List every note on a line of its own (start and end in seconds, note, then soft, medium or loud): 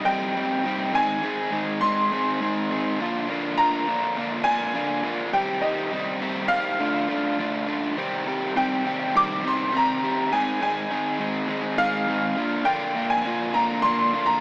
0.05 0.35 C3 medium
0.05 0.35 G3 medium
0.05 0.36 C4 loud
0.05 0.36 D#4 loud
0.05 0.36 G4 loud
0.05 0.96 G5 loud
0.36 0.64 C3 medium
0.36 0.64 G3 medium
0.36 0.65 C4 loud
0.36 0.65 D#4 medium
0.36 0.65 G4 medium
0.65 0.93 C3 medium
0.65 0.93 G3 medium
0.65 0.93 C4 medium
0.65 0.93 D#4 medium
0.65 0.93 G4 medium
0.93 1.21 G#2 loud
0.93 1.21 D#3 medium
0.93 1.22 G#3 loud
0.93 1.22 C4 loud
0.93 1.23 D#4 loud
0.93 1.23 G#4 loud
0.93 1.79 G#5 loud
1.22 1.49 G#2 medium
1.22 1.50 D#3 medium
1.22 1.50 G#3 loud
1.22 1.51 C4 loud
1.22 1.51 D#4 medium
1.22 1.51 G#4 loud
1.51 1.80 G#2 medium
1.51 1.81 D#3 medium
1.51 1.81 G#3 medium
1.51 1.82 C4 medium
1.51 1.82 D#4 loud
1.51 1.82 G#4 medium
1.81 2.09 G#2 loud
1.81 2.10 D#3 loud
1.81 2.11 G#3 loud
1.81 2.11 C4 loud
1.81 2.11 D#4 loud
1.81 2.12 G#4 loud
1.81 2.95 C6 loud
2.11 2.39 G#2 medium
2.11 2.40 D#3 medium
2.11 2.40 G#3 medium
2.11 2.40 C4 loud
2.11 2.41 D#4 loud
2.11 2.41 G#4 loud
2.40 2.69 G#2 loud
2.40 2.70 D#3 loud
2.40 2.70 G#3 loud
2.40 2.70 C4 loud
2.40 2.70 D#4 medium
2.40 2.71 G#4 loud
2.71 2.98 G#2 medium
2.71 2.98 D#3 medium
2.71 2.98 G#3 medium
2.71 2.98 C4 loud
2.71 2.99 D#4 loud
2.71 2.99 G#4 medium
3.00 3.28 A#2 medium
3.00 3.28 D3 medium
3.00 3.29 A#3 loud
3.00 3.29 D4 loud
3.00 3.29 F4 loud
3.29 3.56 A#2 loud
3.29 3.57 D3 medium
3.29 3.57 A#3 loud
3.29 3.58 D4 loud
3.29 3.58 F4 loud
3.58 3.86 A#2 medium
3.58 3.87 D3 medium
3.58 3.87 A#3 loud
3.58 3.87 D4 medium
3.58 3.88 F4 loud
3.58 4.12 A#5 loud
3.87 4.15 A#2 medium
3.87 4.16 D3 medium
3.87 4.16 A#3 medium
3.87 4.17 D4 loud
3.87 4.17 F4 medium
4.17 4.44 A#2 loud
4.17 4.45 D3 loud
4.17 4.45 A#3 loud
4.17 4.45 D4 loud
4.17 4.46 F4 loud
4.44 4.73 A#2 medium
4.44 4.74 D3 medium
4.44 4.75 A#3 loud
4.44 4.74 D4 loud
4.44 4.75 F4 loud
4.44 5.29 G#5 loud
4.75 5.02 A#2 medium
4.75 5.03 D3 loud
4.75 5.03 A#3 loud
4.75 5.03 D4 loud
4.75 5.04 F4 medium
5.04 5.32 A#2 medium
5.04 5.32 D3 loud
5.04 5.32 A#3 loud
5.04 5.32 D4 loud
5.04 5.33 F4 medium
5.33 5.60 C3 medium
5.33 5.61 D#3 loud
5.33 5.61 G3 medium
5.33 5.63 C4 loud
5.33 5.62 G4 loud
5.33 5.61 G5 loud
5.61 5.90 C3 medium
5.61 5.90 D#3 loud
5.61 5.91 G3 loud
5.61 5.92 C4 loud
5.61 5.92 G4 loud
5.61 6.17 D#5 medium
5.91 6.20 C3 medium
5.91 6.21 D#3 medium
5.91 6.21 G3 medium
5.91 6.22 C4 medium
5.91 6.22 G4 medium
6.21 6.48 C3 medium
6.21 6.49 D#3 medium
6.21 6.49 G3 medium
6.21 6.50 C4 loud
6.21 6.50 G4 loud
6.48 6.78 C3 medium
6.48 6.78 D#3 medium
6.48 6.78 G3 loud
6.48 6.80 C4 loud
6.48 6.79 G4 loud
6.48 7.63 F5 loud
6.79 7.07 D3 loud
6.79 7.07 A3 loud
6.79 7.08 D4 loud
6.79 7.08 F4 loud
7.08 7.37 D3 medium
7.08 7.38 A3 medium
7.08 7.39 D4 loud
7.08 7.39 F4 medium
7.39 7.66 D3 medium
7.39 7.66 A3 medium
7.39 7.67 D4 loud
7.39 7.67 F4 medium
7.67 7.95 D3 medium
7.67 7.96 A3 medium
7.67 7.96 D4 medium
7.67 7.96 F4 medium
7.96 8.26 C3 loud
7.96 8.26 D#3 loud
7.96 8.27 G3 loud
7.96 8.28 C4 loud
7.96 8.27 G4 loud
8.27 8.54 C3 medium
8.27 8.55 D#3 medium
8.27 8.55 G3 loud
8.27 8.56 C4 medium
8.27 8.56 G4 loud
8.56 8.84 C3 medium
8.56 8.85 D#3 medium
8.56 8.86 G3 medium
8.56 8.85 C4 medium
8.56 8.86 G4 loud
8.56 9.17 G5 medium
8.85 9.13 C3 medium
8.85 9.14 D#3 loud
8.85 9.14 G3 loud
8.85 9.14 C4 loud
8.85 9.15 G4 loud
9.14 9.43 C3 medium
9.14 9.43 D#3 medium
9.14 9.43 G3 medium
9.14 9.44 C4 loud
9.14 9.44 G4 medium
9.14 9.46 D6 loud
9.44 9.72 C3 medium
9.44 9.72 D#3 medium
9.44 9.72 G3 loud
9.44 9.73 C4 medium
9.44 9.73 G4 loud
9.44 9.73 C6 loud
9.73 10.01 C3 medium
9.73 10.02 D#3 medium
9.73 10.02 G3 medium
9.73 10.03 C4 loud
9.73 10.03 G4 medium
9.73 10.35 A#5 loud
10.03 10.30 C3 medium
10.03 10.31 D#3 medium
10.03 10.31 G3 medium
10.03 10.31 C4 medium
10.03 10.31 G4 loud
10.32 10.59 G#2 loud
10.32 10.60 D#3 medium
10.32 10.60 G#3 loud
10.32 10.61 C4 loud
10.32 10.61 D#4 loud
10.32 10.61 G#4 loud
10.32 10.61 G#5 loud
10.61 10.89 G#2 medium
10.61 10.90 D#3 medium
10.61 10.90 G#3 medium
10.61 10.90 C4 loud
10.61 10.91 D#4 loud
10.61 10.91 G#4 medium
10.61 11.83 G#5 medium
10.90 11.18 G#2 medium
10.90 11.18 D#3 medium
10.90 11.18 G#3 medium
10.90 11.19 C4 medium
10.90 11.19 D#4 medium
10.90 11.19 G#4 loud
11.19 11.46 G#2 medium
11.19 11.47 D#3 loud
11.19 11.47 G#3 loud
11.19 11.47 C4 loud
11.19 11.48 D#4 loud
11.19 11.48 G#4 loud
11.47 11.76 G#2 medium
11.47 11.77 D#3 medium
11.47 11.77 G#3 loud
11.47 11.78 C4 loud
11.47 11.78 D#4 medium
11.47 11.78 G#4 medium
11.78 12.07 G#2 loud
11.78 12.07 D#3 loud
11.78 12.07 G#3 medium
11.78 12.08 C4 medium
11.78 12.08 D#4 loud
11.78 12.08 G#4 loud
11.78 12.69 F5 loud
12.08 12.35 G#2 medium
12.08 12.35 D#3 medium
12.08 12.36 G#3 medium
12.08 12.36 C4 medium
12.08 12.36 D#4 loud
12.08 12.36 G#4 medium
12.37 12.64 A#2 loud
12.37 12.65 D3 medium
12.37 12.65 A#3 loud
12.37 12.66 D4 loud
12.37 12.66 F4 loud
12.65 12.94 A#2 loud
12.65 12.94 D3 loud
12.65 12.94 A#3 loud
12.65 12.95 D4 loud
12.65 12.96 F4 loud
12.65 13.11 G5 loud
12.95 13.24 A#2 medium
12.95 13.25 D3 medium
12.95 13.25 A#3 medium
12.95 13.26 D4 medium
12.95 13.26 F4 medium
13.10 13.51 G#5 loud
13.25 13.54 A#2 medium
13.25 13.54 D3 medium
13.25 13.55 A#3 medium
13.25 13.55 D4 medium
13.25 13.56 F4 loud
13.54 13.82 A#2 loud
13.54 13.83 D3 loud
13.54 13.83 A#3 loud
13.54 13.84 D4 loud
13.54 13.84 F4 loud
13.54 13.84 A#5 loud
13.82 14.12 A#2 medium
13.82 14.13 D3 medium
13.82 14.13 A#3 medium
13.82 14.14 D4 loud
13.82 14.14 F4 loud
13.82 14.28 C6 loud
14.13 14.40 A#2 loud
14.13 14.40 D3 loud
14.13 14.40 A#3 loud
14.13 14.40 D4 loud
14.13 14.40 F4 loud
14.26 14.40 A#5 medium